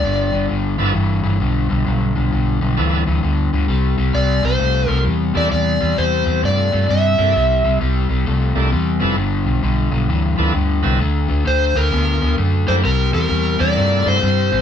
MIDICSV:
0, 0, Header, 1, 5, 480
1, 0, Start_track
1, 0, Tempo, 457317
1, 38, Time_signature, 4, 2, 24, 8
1, 15341, End_track
2, 0, Start_track
2, 0, Title_t, "Electric slide guitar"
2, 0, Program_c, 0, 29
2, 0, Note_on_c, 0, 74, 94
2, 478, Note_off_c, 0, 74, 0
2, 4352, Note_on_c, 0, 74, 99
2, 4640, Note_off_c, 0, 74, 0
2, 4670, Note_on_c, 0, 72, 94
2, 5122, Note_off_c, 0, 72, 0
2, 5122, Note_on_c, 0, 70, 94
2, 5278, Note_off_c, 0, 70, 0
2, 5638, Note_on_c, 0, 74, 79
2, 5777, Note_off_c, 0, 74, 0
2, 5790, Note_on_c, 0, 74, 90
2, 6278, Note_on_c, 0, 72, 79
2, 6287, Note_off_c, 0, 74, 0
2, 6768, Note_off_c, 0, 72, 0
2, 6772, Note_on_c, 0, 74, 79
2, 7247, Note_on_c, 0, 76, 87
2, 7258, Note_off_c, 0, 74, 0
2, 8159, Note_off_c, 0, 76, 0
2, 12043, Note_on_c, 0, 72, 100
2, 12348, Note_on_c, 0, 70, 90
2, 12357, Note_off_c, 0, 72, 0
2, 12958, Note_off_c, 0, 70, 0
2, 13311, Note_on_c, 0, 72, 96
2, 13364, Note_off_c, 0, 72, 0
2, 13487, Note_on_c, 0, 70, 92
2, 13780, Note_off_c, 0, 70, 0
2, 13793, Note_on_c, 0, 70, 91
2, 14278, Note_on_c, 0, 74, 97
2, 14285, Note_off_c, 0, 70, 0
2, 14768, Note_off_c, 0, 74, 0
2, 14780, Note_on_c, 0, 72, 99
2, 15341, Note_off_c, 0, 72, 0
2, 15341, End_track
3, 0, Start_track
3, 0, Title_t, "Tonewheel organ"
3, 0, Program_c, 1, 16
3, 816, Note_on_c, 1, 53, 77
3, 825, Note_on_c, 1, 59, 72
3, 827, Note_on_c, 1, 62, 73
3, 829, Note_on_c, 1, 64, 70
3, 836, Note_on_c, 1, 69, 82
3, 976, Note_off_c, 1, 53, 0
3, 981, Note_off_c, 1, 59, 0
3, 981, Note_off_c, 1, 62, 0
3, 983, Note_off_c, 1, 64, 0
3, 986, Note_off_c, 1, 69, 0
3, 2904, Note_on_c, 1, 53, 53
3, 2905, Note_on_c, 1, 59, 54
3, 2908, Note_on_c, 1, 69, 54
3, 2909, Note_on_c, 1, 62, 47
3, 2913, Note_on_c, 1, 64, 50
3, 3187, Note_off_c, 1, 53, 0
3, 3187, Note_off_c, 1, 59, 0
3, 3189, Note_off_c, 1, 62, 0
3, 3189, Note_off_c, 1, 69, 0
3, 3191, Note_off_c, 1, 64, 0
3, 5611, Note_on_c, 1, 55, 58
3, 5611, Note_on_c, 1, 58, 64
3, 5617, Note_on_c, 1, 64, 59
3, 5618, Note_on_c, 1, 69, 69
3, 5622, Note_on_c, 1, 62, 58
3, 5773, Note_off_c, 1, 55, 0
3, 5773, Note_off_c, 1, 58, 0
3, 5776, Note_off_c, 1, 64, 0
3, 5776, Note_off_c, 1, 69, 0
3, 5778, Note_off_c, 1, 62, 0
3, 7538, Note_on_c, 1, 55, 71
3, 7543, Note_on_c, 1, 62, 70
3, 7544, Note_on_c, 1, 58, 69
3, 7546, Note_on_c, 1, 64, 73
3, 7547, Note_on_c, 1, 69, 82
3, 7696, Note_off_c, 1, 55, 0
3, 7699, Note_off_c, 1, 58, 0
3, 7699, Note_off_c, 1, 62, 0
3, 7700, Note_off_c, 1, 64, 0
3, 7701, Note_off_c, 1, 69, 0
3, 8975, Note_on_c, 1, 58, 65
3, 8978, Note_on_c, 1, 62, 59
3, 8980, Note_on_c, 1, 69, 81
3, 8983, Note_on_c, 1, 55, 71
3, 8983, Note_on_c, 1, 64, 66
3, 9135, Note_off_c, 1, 58, 0
3, 9136, Note_off_c, 1, 62, 0
3, 9138, Note_off_c, 1, 69, 0
3, 9139, Note_off_c, 1, 55, 0
3, 9139, Note_off_c, 1, 64, 0
3, 9451, Note_on_c, 1, 59, 69
3, 9459, Note_on_c, 1, 53, 71
3, 9459, Note_on_c, 1, 62, 69
3, 9467, Note_on_c, 1, 64, 70
3, 9467, Note_on_c, 1, 69, 75
3, 9613, Note_off_c, 1, 59, 0
3, 9617, Note_off_c, 1, 53, 0
3, 9617, Note_off_c, 1, 62, 0
3, 9621, Note_off_c, 1, 64, 0
3, 9621, Note_off_c, 1, 69, 0
3, 10891, Note_on_c, 1, 53, 70
3, 10893, Note_on_c, 1, 59, 60
3, 10899, Note_on_c, 1, 62, 59
3, 10902, Note_on_c, 1, 64, 58
3, 10904, Note_on_c, 1, 69, 73
3, 11053, Note_off_c, 1, 53, 0
3, 11054, Note_off_c, 1, 59, 0
3, 11057, Note_off_c, 1, 62, 0
3, 11058, Note_off_c, 1, 64, 0
3, 11060, Note_off_c, 1, 69, 0
3, 11366, Note_on_c, 1, 54, 68
3, 11366, Note_on_c, 1, 59, 60
3, 11374, Note_on_c, 1, 64, 66
3, 11375, Note_on_c, 1, 60, 60
3, 11379, Note_on_c, 1, 69, 76
3, 11531, Note_off_c, 1, 54, 0
3, 11531, Note_off_c, 1, 59, 0
3, 11535, Note_off_c, 1, 60, 0
3, 11535, Note_off_c, 1, 64, 0
3, 11537, Note_off_c, 1, 69, 0
3, 13306, Note_on_c, 1, 55, 74
3, 13307, Note_on_c, 1, 64, 63
3, 13309, Note_on_c, 1, 58, 66
3, 13310, Note_on_c, 1, 69, 80
3, 13313, Note_on_c, 1, 62, 64
3, 13462, Note_off_c, 1, 55, 0
3, 13462, Note_off_c, 1, 64, 0
3, 13464, Note_off_c, 1, 58, 0
3, 13464, Note_off_c, 1, 69, 0
3, 13465, Note_off_c, 1, 62, 0
3, 14263, Note_on_c, 1, 62, 59
3, 14265, Note_on_c, 1, 55, 70
3, 14265, Note_on_c, 1, 58, 62
3, 14267, Note_on_c, 1, 64, 55
3, 14273, Note_on_c, 1, 69, 75
3, 14885, Note_off_c, 1, 62, 0
3, 14886, Note_off_c, 1, 55, 0
3, 14886, Note_off_c, 1, 58, 0
3, 14887, Note_off_c, 1, 64, 0
3, 14890, Note_off_c, 1, 69, 0
3, 15341, End_track
4, 0, Start_track
4, 0, Title_t, "Overdriven electric guitar"
4, 0, Program_c, 2, 29
4, 33, Note_on_c, 2, 43, 79
4, 36, Note_on_c, 2, 50, 81
4, 312, Note_off_c, 2, 43, 0
4, 313, Note_off_c, 2, 50, 0
4, 337, Note_on_c, 2, 43, 70
4, 343, Note_on_c, 2, 50, 66
4, 496, Note_off_c, 2, 43, 0
4, 499, Note_off_c, 2, 50, 0
4, 509, Note_on_c, 2, 43, 71
4, 516, Note_on_c, 2, 50, 85
4, 790, Note_off_c, 2, 43, 0
4, 793, Note_off_c, 2, 50, 0
4, 821, Note_on_c, 2, 43, 67
4, 826, Note_on_c, 2, 50, 75
4, 975, Note_off_c, 2, 43, 0
4, 981, Note_off_c, 2, 50, 0
4, 987, Note_on_c, 2, 43, 72
4, 990, Note_on_c, 2, 52, 85
4, 1269, Note_off_c, 2, 43, 0
4, 1270, Note_off_c, 2, 52, 0
4, 1295, Note_on_c, 2, 43, 79
4, 1298, Note_on_c, 2, 52, 83
4, 1455, Note_off_c, 2, 43, 0
4, 1457, Note_off_c, 2, 52, 0
4, 1469, Note_on_c, 2, 43, 75
4, 1471, Note_on_c, 2, 50, 92
4, 1749, Note_off_c, 2, 43, 0
4, 1751, Note_off_c, 2, 50, 0
4, 1776, Note_on_c, 2, 43, 71
4, 1781, Note_on_c, 2, 50, 69
4, 1936, Note_off_c, 2, 43, 0
4, 1939, Note_off_c, 2, 50, 0
4, 1949, Note_on_c, 2, 43, 74
4, 1957, Note_on_c, 2, 50, 73
4, 2230, Note_off_c, 2, 43, 0
4, 2233, Note_off_c, 2, 50, 0
4, 2260, Note_on_c, 2, 43, 60
4, 2267, Note_on_c, 2, 50, 67
4, 2418, Note_off_c, 2, 43, 0
4, 2421, Note_off_c, 2, 50, 0
4, 2434, Note_on_c, 2, 43, 71
4, 2441, Note_on_c, 2, 50, 78
4, 2712, Note_off_c, 2, 43, 0
4, 2715, Note_off_c, 2, 50, 0
4, 2743, Note_on_c, 2, 50, 78
4, 2745, Note_on_c, 2, 43, 71
4, 2897, Note_off_c, 2, 43, 0
4, 2899, Note_off_c, 2, 50, 0
4, 2910, Note_on_c, 2, 43, 77
4, 2911, Note_on_c, 2, 52, 81
4, 3190, Note_off_c, 2, 43, 0
4, 3190, Note_off_c, 2, 52, 0
4, 3217, Note_on_c, 2, 43, 72
4, 3222, Note_on_c, 2, 52, 79
4, 3376, Note_off_c, 2, 43, 0
4, 3379, Note_off_c, 2, 52, 0
4, 3389, Note_on_c, 2, 43, 65
4, 3393, Note_on_c, 2, 50, 78
4, 3669, Note_off_c, 2, 43, 0
4, 3671, Note_off_c, 2, 50, 0
4, 3704, Note_on_c, 2, 43, 67
4, 3711, Note_on_c, 2, 50, 74
4, 3860, Note_off_c, 2, 43, 0
4, 3862, Note_off_c, 2, 50, 0
4, 3866, Note_on_c, 2, 48, 78
4, 3872, Note_on_c, 2, 55, 89
4, 4148, Note_off_c, 2, 48, 0
4, 4150, Note_off_c, 2, 55, 0
4, 4174, Note_on_c, 2, 48, 68
4, 4174, Note_on_c, 2, 55, 69
4, 4334, Note_off_c, 2, 55, 0
4, 4335, Note_off_c, 2, 48, 0
4, 4349, Note_on_c, 2, 48, 87
4, 4355, Note_on_c, 2, 55, 82
4, 4629, Note_off_c, 2, 48, 0
4, 4632, Note_off_c, 2, 55, 0
4, 4651, Note_on_c, 2, 48, 73
4, 4652, Note_on_c, 2, 55, 91
4, 4809, Note_off_c, 2, 48, 0
4, 4814, Note_off_c, 2, 55, 0
4, 4822, Note_on_c, 2, 48, 73
4, 4832, Note_on_c, 2, 57, 85
4, 5105, Note_off_c, 2, 48, 0
4, 5110, Note_off_c, 2, 57, 0
4, 5124, Note_on_c, 2, 48, 74
4, 5129, Note_on_c, 2, 57, 81
4, 5281, Note_off_c, 2, 48, 0
4, 5292, Note_off_c, 2, 57, 0
4, 5293, Note_on_c, 2, 48, 72
4, 5299, Note_on_c, 2, 55, 80
4, 5581, Note_off_c, 2, 48, 0
4, 5584, Note_off_c, 2, 55, 0
4, 5603, Note_on_c, 2, 48, 65
4, 5611, Note_on_c, 2, 55, 74
4, 5763, Note_off_c, 2, 48, 0
4, 5766, Note_off_c, 2, 55, 0
4, 5775, Note_on_c, 2, 48, 75
4, 5779, Note_on_c, 2, 55, 73
4, 6062, Note_off_c, 2, 48, 0
4, 6064, Note_off_c, 2, 55, 0
4, 6092, Note_on_c, 2, 48, 62
4, 6096, Note_on_c, 2, 55, 70
4, 6253, Note_off_c, 2, 48, 0
4, 6255, Note_off_c, 2, 55, 0
4, 6270, Note_on_c, 2, 48, 77
4, 6272, Note_on_c, 2, 55, 87
4, 6549, Note_off_c, 2, 48, 0
4, 6550, Note_off_c, 2, 55, 0
4, 6570, Note_on_c, 2, 48, 76
4, 6577, Note_on_c, 2, 55, 84
4, 6732, Note_off_c, 2, 48, 0
4, 6736, Note_off_c, 2, 55, 0
4, 6749, Note_on_c, 2, 48, 69
4, 6755, Note_on_c, 2, 57, 82
4, 7029, Note_off_c, 2, 48, 0
4, 7032, Note_off_c, 2, 57, 0
4, 7056, Note_on_c, 2, 48, 67
4, 7059, Note_on_c, 2, 57, 81
4, 7215, Note_off_c, 2, 48, 0
4, 7217, Note_off_c, 2, 57, 0
4, 7230, Note_on_c, 2, 48, 81
4, 7231, Note_on_c, 2, 55, 81
4, 7509, Note_off_c, 2, 48, 0
4, 7510, Note_off_c, 2, 55, 0
4, 7537, Note_on_c, 2, 48, 72
4, 7544, Note_on_c, 2, 55, 76
4, 7696, Note_off_c, 2, 48, 0
4, 7699, Note_off_c, 2, 55, 0
4, 7716, Note_on_c, 2, 48, 76
4, 7724, Note_on_c, 2, 55, 83
4, 7992, Note_off_c, 2, 48, 0
4, 7996, Note_off_c, 2, 55, 0
4, 8023, Note_on_c, 2, 48, 62
4, 8023, Note_on_c, 2, 55, 74
4, 8179, Note_off_c, 2, 48, 0
4, 8179, Note_off_c, 2, 55, 0
4, 8196, Note_on_c, 2, 48, 82
4, 8198, Note_on_c, 2, 55, 86
4, 8472, Note_off_c, 2, 48, 0
4, 8473, Note_off_c, 2, 55, 0
4, 8495, Note_on_c, 2, 48, 76
4, 8503, Note_on_c, 2, 55, 85
4, 8655, Note_off_c, 2, 48, 0
4, 8659, Note_off_c, 2, 55, 0
4, 8675, Note_on_c, 2, 48, 74
4, 8681, Note_on_c, 2, 57, 79
4, 8952, Note_off_c, 2, 48, 0
4, 8955, Note_off_c, 2, 57, 0
4, 8981, Note_on_c, 2, 48, 72
4, 8988, Note_on_c, 2, 57, 79
4, 9138, Note_off_c, 2, 48, 0
4, 9141, Note_off_c, 2, 57, 0
4, 9156, Note_on_c, 2, 48, 78
4, 9161, Note_on_c, 2, 55, 84
4, 9432, Note_off_c, 2, 48, 0
4, 9435, Note_off_c, 2, 55, 0
4, 9446, Note_on_c, 2, 48, 73
4, 9453, Note_on_c, 2, 55, 84
4, 9610, Note_off_c, 2, 48, 0
4, 9614, Note_off_c, 2, 55, 0
4, 9636, Note_on_c, 2, 43, 73
4, 9638, Note_on_c, 2, 50, 89
4, 9912, Note_off_c, 2, 43, 0
4, 9914, Note_off_c, 2, 50, 0
4, 9928, Note_on_c, 2, 43, 65
4, 9935, Note_on_c, 2, 50, 67
4, 10092, Note_off_c, 2, 43, 0
4, 10095, Note_off_c, 2, 50, 0
4, 10106, Note_on_c, 2, 43, 80
4, 10111, Note_on_c, 2, 50, 93
4, 10387, Note_off_c, 2, 43, 0
4, 10390, Note_off_c, 2, 50, 0
4, 10406, Note_on_c, 2, 43, 81
4, 10407, Note_on_c, 2, 50, 84
4, 10571, Note_off_c, 2, 43, 0
4, 10571, Note_off_c, 2, 50, 0
4, 10592, Note_on_c, 2, 43, 74
4, 10601, Note_on_c, 2, 52, 82
4, 10871, Note_off_c, 2, 43, 0
4, 10875, Note_off_c, 2, 52, 0
4, 10896, Note_on_c, 2, 43, 69
4, 10902, Note_on_c, 2, 52, 77
4, 11048, Note_off_c, 2, 43, 0
4, 11059, Note_off_c, 2, 52, 0
4, 11061, Note_on_c, 2, 43, 82
4, 11067, Note_on_c, 2, 50, 74
4, 11345, Note_off_c, 2, 43, 0
4, 11348, Note_off_c, 2, 50, 0
4, 11362, Note_on_c, 2, 43, 74
4, 11367, Note_on_c, 2, 50, 78
4, 11529, Note_off_c, 2, 43, 0
4, 11532, Note_off_c, 2, 50, 0
4, 11543, Note_on_c, 2, 50, 74
4, 11549, Note_on_c, 2, 57, 81
4, 11827, Note_off_c, 2, 50, 0
4, 11830, Note_off_c, 2, 57, 0
4, 11843, Note_on_c, 2, 50, 65
4, 11850, Note_on_c, 2, 57, 70
4, 12009, Note_off_c, 2, 50, 0
4, 12013, Note_off_c, 2, 57, 0
4, 12022, Note_on_c, 2, 50, 73
4, 12027, Note_on_c, 2, 57, 85
4, 12306, Note_off_c, 2, 50, 0
4, 12309, Note_off_c, 2, 57, 0
4, 12338, Note_on_c, 2, 50, 78
4, 12347, Note_on_c, 2, 57, 83
4, 12497, Note_off_c, 2, 50, 0
4, 12502, Note_off_c, 2, 57, 0
4, 12514, Note_on_c, 2, 50, 75
4, 12516, Note_on_c, 2, 59, 89
4, 12793, Note_off_c, 2, 50, 0
4, 12794, Note_off_c, 2, 59, 0
4, 12817, Note_on_c, 2, 50, 71
4, 12821, Note_on_c, 2, 59, 86
4, 12977, Note_off_c, 2, 50, 0
4, 12979, Note_off_c, 2, 59, 0
4, 12990, Note_on_c, 2, 50, 75
4, 12996, Note_on_c, 2, 57, 87
4, 13271, Note_off_c, 2, 50, 0
4, 13274, Note_off_c, 2, 57, 0
4, 13297, Note_on_c, 2, 50, 71
4, 13302, Note_on_c, 2, 57, 75
4, 13458, Note_off_c, 2, 50, 0
4, 13460, Note_off_c, 2, 57, 0
4, 13470, Note_on_c, 2, 48, 79
4, 13478, Note_on_c, 2, 55, 85
4, 13751, Note_off_c, 2, 48, 0
4, 13755, Note_off_c, 2, 55, 0
4, 13781, Note_on_c, 2, 48, 63
4, 13783, Note_on_c, 2, 55, 80
4, 13940, Note_off_c, 2, 48, 0
4, 13941, Note_off_c, 2, 55, 0
4, 13955, Note_on_c, 2, 48, 80
4, 13960, Note_on_c, 2, 55, 89
4, 14234, Note_off_c, 2, 48, 0
4, 14237, Note_off_c, 2, 55, 0
4, 14268, Note_on_c, 2, 48, 77
4, 14275, Note_on_c, 2, 55, 83
4, 14424, Note_off_c, 2, 48, 0
4, 14427, Note_off_c, 2, 55, 0
4, 14446, Note_on_c, 2, 48, 81
4, 14450, Note_on_c, 2, 57, 81
4, 14720, Note_off_c, 2, 48, 0
4, 14722, Note_off_c, 2, 57, 0
4, 14753, Note_on_c, 2, 48, 68
4, 14762, Note_on_c, 2, 57, 75
4, 14907, Note_off_c, 2, 48, 0
4, 14911, Note_off_c, 2, 57, 0
4, 14934, Note_on_c, 2, 48, 77
4, 14944, Note_on_c, 2, 55, 86
4, 15205, Note_off_c, 2, 48, 0
4, 15210, Note_off_c, 2, 55, 0
4, 15240, Note_on_c, 2, 48, 82
4, 15244, Note_on_c, 2, 55, 71
4, 15341, Note_off_c, 2, 48, 0
4, 15341, Note_off_c, 2, 55, 0
4, 15341, End_track
5, 0, Start_track
5, 0, Title_t, "Fingered electric bass"
5, 0, Program_c, 3, 33
5, 43, Note_on_c, 3, 31, 91
5, 331, Note_off_c, 3, 31, 0
5, 355, Note_on_c, 3, 31, 78
5, 514, Note_off_c, 3, 31, 0
5, 531, Note_on_c, 3, 31, 79
5, 815, Note_off_c, 3, 31, 0
5, 834, Note_on_c, 3, 31, 80
5, 993, Note_off_c, 3, 31, 0
5, 1000, Note_on_c, 3, 31, 91
5, 1289, Note_off_c, 3, 31, 0
5, 1308, Note_on_c, 3, 31, 90
5, 1470, Note_off_c, 3, 31, 0
5, 1481, Note_on_c, 3, 35, 80
5, 1769, Note_off_c, 3, 35, 0
5, 1795, Note_on_c, 3, 35, 86
5, 1953, Note_off_c, 3, 35, 0
5, 1974, Note_on_c, 3, 35, 93
5, 2256, Note_off_c, 3, 35, 0
5, 2280, Note_on_c, 3, 35, 80
5, 2436, Note_off_c, 3, 35, 0
5, 2448, Note_on_c, 3, 35, 84
5, 2733, Note_off_c, 3, 35, 0
5, 2757, Note_on_c, 3, 35, 90
5, 2911, Note_off_c, 3, 35, 0
5, 2918, Note_on_c, 3, 38, 92
5, 3207, Note_off_c, 3, 38, 0
5, 3227, Note_on_c, 3, 38, 81
5, 3389, Note_off_c, 3, 38, 0
5, 3398, Note_on_c, 3, 38, 78
5, 3688, Note_off_c, 3, 38, 0
5, 3705, Note_on_c, 3, 38, 74
5, 3862, Note_off_c, 3, 38, 0
5, 3869, Note_on_c, 3, 36, 91
5, 4163, Note_off_c, 3, 36, 0
5, 4180, Note_on_c, 3, 36, 82
5, 4345, Note_off_c, 3, 36, 0
5, 4353, Note_on_c, 3, 36, 79
5, 4645, Note_off_c, 3, 36, 0
5, 4659, Note_on_c, 3, 36, 84
5, 4825, Note_off_c, 3, 36, 0
5, 4837, Note_on_c, 3, 36, 92
5, 5127, Note_off_c, 3, 36, 0
5, 5135, Note_on_c, 3, 36, 79
5, 5302, Note_off_c, 3, 36, 0
5, 5313, Note_on_c, 3, 40, 77
5, 5604, Note_off_c, 3, 40, 0
5, 5624, Note_on_c, 3, 40, 84
5, 5787, Note_off_c, 3, 40, 0
5, 5800, Note_on_c, 3, 40, 87
5, 6088, Note_off_c, 3, 40, 0
5, 6110, Note_on_c, 3, 40, 88
5, 6270, Note_off_c, 3, 40, 0
5, 6276, Note_on_c, 3, 40, 73
5, 6566, Note_off_c, 3, 40, 0
5, 6578, Note_on_c, 3, 40, 83
5, 6744, Note_off_c, 3, 40, 0
5, 6749, Note_on_c, 3, 43, 90
5, 7043, Note_off_c, 3, 43, 0
5, 7074, Note_on_c, 3, 43, 82
5, 7232, Note_off_c, 3, 43, 0
5, 7245, Note_on_c, 3, 43, 86
5, 7531, Note_off_c, 3, 43, 0
5, 7545, Note_on_c, 3, 43, 86
5, 7708, Note_off_c, 3, 43, 0
5, 7724, Note_on_c, 3, 36, 91
5, 8010, Note_off_c, 3, 36, 0
5, 8032, Note_on_c, 3, 36, 88
5, 8191, Note_off_c, 3, 36, 0
5, 8198, Note_on_c, 3, 36, 78
5, 8487, Note_off_c, 3, 36, 0
5, 8503, Note_on_c, 3, 36, 84
5, 8666, Note_off_c, 3, 36, 0
5, 8687, Note_on_c, 3, 36, 92
5, 8972, Note_off_c, 3, 36, 0
5, 8979, Note_on_c, 3, 36, 83
5, 9144, Note_off_c, 3, 36, 0
5, 9161, Note_on_c, 3, 40, 75
5, 9449, Note_off_c, 3, 40, 0
5, 9465, Note_on_c, 3, 29, 77
5, 9631, Note_off_c, 3, 29, 0
5, 9631, Note_on_c, 3, 31, 94
5, 9923, Note_off_c, 3, 31, 0
5, 9930, Note_on_c, 3, 35, 91
5, 10100, Note_off_c, 3, 35, 0
5, 10109, Note_on_c, 3, 35, 74
5, 10402, Note_off_c, 3, 35, 0
5, 10417, Note_on_c, 3, 35, 84
5, 10579, Note_off_c, 3, 35, 0
5, 10585, Note_on_c, 3, 38, 92
5, 10881, Note_off_c, 3, 38, 0
5, 10898, Note_on_c, 3, 38, 82
5, 11062, Note_off_c, 3, 38, 0
5, 11068, Note_on_c, 3, 38, 73
5, 11362, Note_off_c, 3, 38, 0
5, 11382, Note_on_c, 3, 36, 79
5, 11547, Note_off_c, 3, 36, 0
5, 11556, Note_on_c, 3, 38, 93
5, 11847, Note_off_c, 3, 38, 0
5, 11864, Note_on_c, 3, 38, 81
5, 12028, Note_off_c, 3, 38, 0
5, 12038, Note_on_c, 3, 38, 86
5, 12328, Note_off_c, 3, 38, 0
5, 12346, Note_on_c, 3, 38, 82
5, 12509, Note_off_c, 3, 38, 0
5, 12527, Note_on_c, 3, 38, 92
5, 12813, Note_off_c, 3, 38, 0
5, 12834, Note_on_c, 3, 38, 80
5, 12994, Note_off_c, 3, 38, 0
5, 13003, Note_on_c, 3, 42, 81
5, 13292, Note_off_c, 3, 42, 0
5, 13316, Note_on_c, 3, 42, 85
5, 13475, Note_off_c, 3, 42, 0
5, 13485, Note_on_c, 3, 36, 82
5, 13773, Note_off_c, 3, 36, 0
5, 13785, Note_on_c, 3, 40, 85
5, 13950, Note_off_c, 3, 40, 0
5, 13965, Note_on_c, 3, 40, 77
5, 14253, Note_off_c, 3, 40, 0
5, 14279, Note_on_c, 3, 40, 85
5, 14437, Note_off_c, 3, 40, 0
5, 14447, Note_on_c, 3, 43, 92
5, 14735, Note_off_c, 3, 43, 0
5, 14757, Note_on_c, 3, 43, 77
5, 14917, Note_off_c, 3, 43, 0
5, 14935, Note_on_c, 3, 43, 86
5, 15219, Note_off_c, 3, 43, 0
5, 15243, Note_on_c, 3, 33, 83
5, 15341, Note_off_c, 3, 33, 0
5, 15341, End_track
0, 0, End_of_file